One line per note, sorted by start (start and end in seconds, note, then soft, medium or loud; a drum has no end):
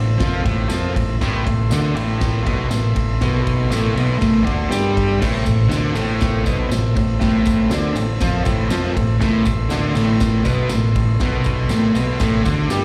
0.00 0.18 A1 medium
0.00 0.15 A2 medium
0.00 1.16 A4 medium
0.00 1.16 C5 medium
0.00 1.16 E5 medium
0.18 0.43 F2 medium
0.18 0.43 F3 loud
0.18 0.44 F4 loud
0.18 kick loud
0.18 snare loud
0.18 ride loud
0.44 0.69 A1 loud
0.44 0.68 A2 medium
0.44 0.69 A3 medium
0.44 kick medium
0.44 ride medium
0.69 0.93 F2 loud
0.69 0.94 F3 loud
0.69 0.94 F4 loud
0.69 snare loud
0.69 ride loud
0.69 tambourine loud
0.95 1.19 A1 medium
0.95 1.15 A2 medium
0.95 kick medium
0.95 ride medium
1.20 1.44 A1 loud
1.20 1.44 A2 medium
1.20 1.45 A3 medium
1.20 5.17 A4 medium
1.20 5.17 E5 medium
1.20 5.17 C6 medium
1.20 kick loud
1.20 snare loud
1.20 ride medium
1.45 1.68 A1 medium
1.45 1.65 A2 medium
1.45 kick medium
1.45 ride medium
1.69 1.93 D2 loud
1.69 1.95 D3 loud
1.69 snare loud
1.69 ride loud
1.69 tambourine loud
1.73 1.96 D4 loud
1.95 2.42 A1 loud
1.95 2.43 A2 medium
1.95 2.45 A3 medium
1.95 ride medium
2.21 kick loud
2.21 snare loud
2.21 ride loud
2.44 2.69 B1 loud
2.44 2.69 B2 medium
2.44 2.70 B3 loud
2.44 kick medium
2.44 ride medium
2.69 2.93 A1 medium
2.69 2.90 A2 medium
2.69 snare loud
2.69 ride loud
2.69 tambourine loud
2.95 3.19 A1 medium
2.95 3.15 A2 medium
2.95 kick medium
2.95 ride medium
3.21 3.68 B1 loud
3.21 3.70 B2 medium
3.21 3.70 B3 loud
3.21 kick loud
3.21 snare loud
3.21 ride medium
3.47 kick medium
3.47 ride medium
3.71 3.94 A1 loud
3.71 3.94 A2 medium
3.71 3.96 A3 loud
3.71 snare loud
3.71 ride loud
3.71 tambourine medium
3.95 4.18 B1 medium
3.95 4.18 B2 medium
3.95 4.19 B3 loud
3.95 ride medium
4.18 4.45 A1 medium
4.18 4.43 A2 loud
4.18 4.44 A3 loud
4.18 kick loud
4.18 snare loud
4.18 ride loud
4.44 4.69 D2 loud
4.44 4.69 D3 loud
4.44 4.70 D4 loud
4.44 kick medium
4.44 ride medium
4.69 5.17 G2 loud
4.69 5.19 G3 medium
4.69 5.20 G4 loud
4.69 snare loud
4.69 ride loud
4.69 tambourine loud
4.97 kick medium
4.97 ride medium
5.20 5.44 A1 loud
5.20 5.44 A2 medium
5.20 5.45 A3 loud
5.20 9.17 A4 medium
5.20 9.16 C5 medium
5.20 9.17 E5 medium
5.20 kick loud
5.20 snare loud
5.20 crash loud
5.20 tambourine soft
5.45 5.69 A1 medium
5.45 5.65 A2 medium
5.45 kick medium
5.45 ride medium
5.45 tambourine medium
5.68 5.93 D2 loud
5.68 5.93 D3 loud
5.68 5.94 D4 loud
5.68 snare loud
5.68 ride loud
5.68 tambourine medium
5.94 6.42 A1 medium
5.94 6.44 A2 medium
5.94 6.45 A3 loud
5.94 ride medium
5.94 tambourine medium
6.21 kick loud
6.21 snare loud
6.21 ride loud
6.21 tambourine medium
6.45 6.70 B1 loud
6.45 6.70 B2 medium
6.45 6.70 B3 loud
6.45 kick medium
6.45 ride medium
6.45 tambourine medium
6.70 6.94 A1 medium
6.70 6.90 A2 medium
6.70 snare loud
6.70 ride loud
6.70 tambourine loud
6.95 7.20 A1 medium
6.95 7.16 A2 medium
6.95 kick medium
6.95 ride medium
7.20 7.68 A1 loud
7.20 7.70 A2 medium
7.20 7.70 A3 medium
7.20 kick loud
7.20 snare loud
7.20 ride loud
7.20 tambourine soft
7.45 kick medium
7.45 ride medium
7.45 tambourine medium
7.70 7.93 D2 loud
7.70 7.94 D3 loud
7.70 7.96 D4 loud
7.70 snare loud
7.70 ride loud
7.70 tambourine loud
7.94 8.18 A1 medium
7.94 8.15 A2 medium
7.94 ride medium
7.94 tambourine medium
8.20 8.44 F2 medium
8.20 8.44 F3 loud
8.20 8.45 F4 loud
8.20 kick loud
8.20 snare loud
8.20 ride loud
8.20 tambourine medium
8.44 8.69 A1 medium
8.44 8.69 A2 medium
8.44 8.70 A3 loud
8.44 kick medium
8.44 ride medium
8.44 tambourine medium
8.69 8.94 F2 loud
8.69 8.94 F3 medium
8.69 8.95 F4 loud
8.69 snare loud
8.69 ride loud
8.69 tambourine loud
8.94 9.20 A1 medium
8.94 9.15 A2 medium
8.94 kick medium
8.94 ride medium
9.20 9.45 A1 loud
9.20 9.44 A2 medium
9.20 9.45 A3 medium
9.20 12.85 A4 medium
9.20 12.85 E5 medium
9.20 12.45 C6 medium
9.20 kick loud
9.20 snare loud
9.20 ride loud
9.20 tambourine soft
9.45 9.69 A1 medium
9.45 9.66 A2 medium
9.45 kick medium
9.45 ride medium
9.45 tambourine medium
9.70 9.94 D2 loud
9.70 9.94 D3 loud
9.70 9.96 D4 loud
9.70 snare loud
9.70 ride loud
9.70 tambourine loud
9.95 10.42 A1 loud
9.95 10.44 A2 medium
9.95 10.45 A3 loud
9.95 ride medium
9.95 tambourine medium
10.20 kick loud
10.20 snare loud
10.20 ride loud
10.20 tambourine medium
10.44 10.69 B1 loud
10.44 10.69 B2 medium
10.44 10.70 B3 loud
10.44 kick medium
10.44 ride medium
10.44 tambourine medium
10.69 10.93 A1 medium
10.69 10.91 A2 medium
10.69 snare loud
10.69 ride loud
10.69 tambourine loud
10.95 11.19 A1 medium
10.95 11.15 A2 medium
10.95 kick medium
10.95 ride medium
11.20 11.67 B1 loud
11.20 11.70 B2 medium
11.20 11.70 B3 medium
11.20 kick loud
11.20 snare loud
11.20 ride medium
11.20 tambourine soft
11.44 kick medium
11.44 ride medium
11.44 tambourine medium
11.69 11.93 A1 loud
11.69 11.95 A2 medium
11.69 11.95 A3 loud
11.69 snare loud
11.69 ride loud
11.69 tambourine medium
11.95 12.18 B1 medium
11.95 12.20 B2 medium
11.95 12.20 B3 medium
11.95 ride medium
11.95 tambourine medium
12.20 12.44 A1 loud
12.20 12.44 A2 loud
12.20 12.45 A3 loud
12.20 kick loud
12.20 snare loud
12.20 ride loud
12.20 tambourine medium
12.44 12.68 D2 medium
12.44 12.69 D3 medium
12.44 12.70 D4 loud
12.44 12.69 C6 medium
12.44 kick medium
12.44 ride medium
12.44 tambourine medium
12.69 12.85 G2 medium
12.69 12.85 G3 medium
12.69 12.85 G4 loud
12.69 12.85 A5 medium
12.69 snare loud
12.69 ride loud
12.69 tambourine loud